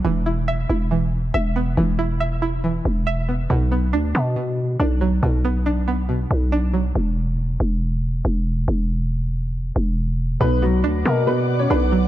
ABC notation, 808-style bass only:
X:1
M:4/4
L:1/8
Q:1/4=139
K:Bm
V:1 name="808-style bass" clef=bass
E,,,3 E,,,3 E,,,2 | E,,,4- E,,, E,,,3 | B,,,2 D,, B,,3 B,,,2 | B,,,4- B,,, B,,,3 |
E,,,3 E,,,3 E,,,2 | E,,,4- E,,, E,,,3 | B,,,2 D,, B,,3 B,,,2 |]